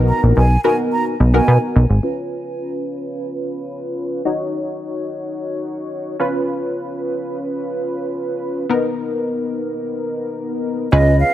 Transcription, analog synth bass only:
0.00 0.12 B1 loud
0.23 0.33 A#1 medium
0.37 0.57 B1 loud
1.20 1.41 B1 medium
1.48 1.58 B2 loud
1.76 1.86 B1 loud
1.90 2.00 G#1 medium
10.92 11.23 C#2 loud

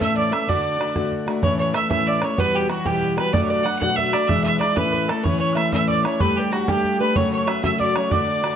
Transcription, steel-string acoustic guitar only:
0.00 0.33 A2 medium
0.00 0.32 E3 medium
0.00 0.34 A3 medium
0.00 0.32 C#4 medium
0.00 0.31 A4 medium
0.32 0.47 A3 medium
0.32 0.48 C#4 medium
0.32 0.48 A4 medium
0.48 0.78 D3 medium
0.48 0.79 A3 medium
0.48 0.79 D4 medium
0.48 0.80 F#4 medium
0.79 0.95 D3 medium
0.79 0.95 A3 medium
0.79 0.95 D4 medium
0.79 0.94 F#4 medium
0.95 1.28 D3 medium
0.95 1.27 A3 medium
0.95 1.26 D4 medium
0.95 1.25 F#4 medium
1.26 1.42 A3 medium
1.26 1.43 D4 medium
1.26 1.43 F#4 medium
1.42 1.74 A2 medium
1.42 1.73 E3 medium
1.42 1.74 A3 medium
1.42 1.75 C#4 medium
1.42 1.75 E4 medium
1.74 1.90 E3 medium
1.74 1.90 A3 medium
1.74 1.90 C#4 medium
1.74 1.89 E4 medium
1.90 2.23 A2 medium
1.90 2.23 E3 medium
1.90 2.22 A3 medium
1.90 2.21 C#4 medium
1.90 2.20 E4 medium
2.21 2.38 A3 soft
2.21 2.38 C#4 medium
2.21 2.38 E4 medium
2.37 2.69 E2 medium
2.37 2.69 B2 medium
2.37 2.67 E3 medium
2.37 2.68 G3 medium
2.37 2.69 B3 medium
2.37 2.69 F#4 medium
2.69 2.85 E3 medium
2.69 2.84 G3 medium
2.69 2.84 B3 medium
2.69 2.86 F#4 medium
2.85 3.18 E2 medium
2.85 3.18 B2 medium
2.85 3.18 E3 medium
2.85 3.17 G3 medium
2.85 3.17 B3 medium
3.17 3.34 E3 medium
3.17 3.34 G3 medium
3.17 3.34 B3 medium
3.17 3.33 F#4 medium
3.33 3.65 B2 medium
3.33 3.64 F#3 medium
3.33 3.64 A3 medium
3.33 3.65 D4 medium
3.33 3.66 F#4 medium
3.65 3.81 F#3 medium
3.65 3.81 A3 medium
3.65 3.81 D4 medium
3.65 3.80 F#4 medium
3.81 4.14 B2 medium
3.81 4.14 F#3 medium
3.81 4.14 A3 medium
3.81 4.13 D4 medium
3.81 4.11 F#4 medium
4.12 4.29 A3 medium
4.12 4.28 D4 medium
4.12 4.29 F#4 medium
4.28 4.60 E2 medium
4.28 4.61 B2 medium
4.28 4.58 E3 medium
4.28 4.59 G#3 medium
4.28 4.60 D4 medium
4.28 4.61 E4 medium
4.59 4.76 E3 medium
4.59 4.77 G#3 medium
4.59 4.77 D4 medium
4.59 4.76 E4 medium
4.77 5.09 A2 medium
4.77 5.09 E3 medium
4.77 5.10 A3 medium
4.77 5.09 C#4 medium
4.77 5.07 E4 medium
5.08 5.23 A3 medium
5.08 5.24 C#4 medium
5.08 5.24 E4 medium
5.24 5.56 A2 medium
5.24 5.55 E3 medium
5.24 5.56 A3 medium
5.24 5.56 C#4 medium
5.24 5.57 E4 loud
5.56 5.72 E3 medium
5.56 5.72 A3 medium
5.56 5.72 C#4 medium
5.56 5.71 E4 medium
5.73 6.05 A2 medium
5.73 6.05 E3 medium
5.73 6.06 A3 medium
5.73 6.04 C#4 medium
5.73 6.03 E4 medium
6.04 6.19 A3 medium
6.04 6.20 C#4 medium
6.04 6.20 E4 medium
6.20 6.51 G3 medium
6.20 6.52 A3 medium
6.20 6.52 D4 medium
6.20 6.52 G4 medium
6.52 6.68 G3 medium
6.52 6.68 A3 medium
6.52 6.67 D4 medium
6.52 6.67 G4 medium
6.68 7.00 G3 medium
6.68 7.01 A3 medium
6.68 7.00 D4 medium
6.68 6.98 G4 medium
7.00 7.15 A3 medium
7.00 7.16 D4 medium
7.00 7.15 G4 medium
7.15 7.47 F#2 medium
7.15 7.47 C#3 medium
7.15 7.47 F#3 medium
7.15 7.48 A3 medium
7.15 7.47 C#4 medium
7.15 7.49 F#4 medium
7.47 7.63 F#3 medium
7.47 7.63 A3 medium
7.47 7.62 C#4 medium
7.47 7.62 F#4 medium
7.63 7.96 F#2 medium
7.63 7.96 C#3 medium
7.63 7.97 F#3 medium
7.63 7.97 A3 medium
7.63 7.95 C#4 medium
7.63 7.95 F#4 medium
7.95 8.11 F#3 medium
7.95 8.11 A3 medium
7.95 8.12 C#4 medium
7.95 8.11 F#4 medium
8.11 8.42 D3 medium
8.11 8.43 A3 medium
8.11 8.43 D4 medium
8.11 8.44 F#4 loud
8.43 8.56 D3 medium
8.43 8.56 A3 medium
8.43 8.56 D4 medium
8.43 8.56 F#4 medium

